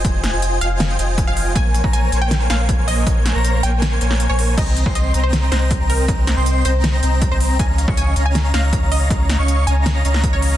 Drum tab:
CC |----------------|----------------|----------------|x---------------|
HH |x-x-x-x-x-x-x-o-|x-x-x-x-x-x-x-o-|x-x-x-x-x-x-x-o-|x-x-x-x-x-x-x-o-|
SD |--o-----o-------|--------o-o-----|--o-----o--o----|--------o-o-----|
BD |o-----------o---|o--o--------o---|o---------------|o--o--------o---|

CC |----------------|----------------|----------------|
HH |x-x-x-x-x-x-x-o-|x-x-x-x-x-x-x-o-|x-x-x-x-x-x-x-o-|
SD |--o-----o-------|--------o-o-----|--o-----o--o----|
BD |o-----------o---|o--o--------o---|o-----------o---|